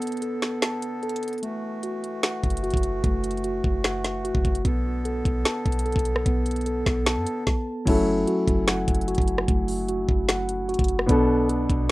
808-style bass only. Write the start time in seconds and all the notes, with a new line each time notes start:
2.44 F#1
2.74 F#1
3.04 F#1
3.64 F#1
4.35 F#1
4.45 F#1
4.65 B1
5.25 B1
5.66 B1
5.96 B1
6.26 B1
6.86 B1
7.17 F#2
7.87 F#1
8.48 F#1
8.88 F#1
9.18 F#1
9.48 F#1
10.09 F#1
10.79 F#1
11.09 B1
11.70 B1